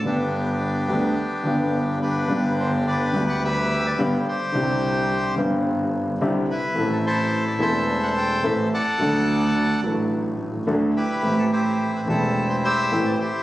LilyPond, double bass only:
\new Staff \with { instrumentName = "Double bass" } { \clef bass \time 4/4 \key g \major \tempo 4 = 107 g,,4. d,8 r8 g,,4. | g,,4. d,4. g,,8 r8 | c,4. g,,4. c,8 r8 | a,,4. e,,4. a,,8 r8 |
d,4. a,,4. d,8 r8 | a,,4. e,,4. a,,8 r8 | }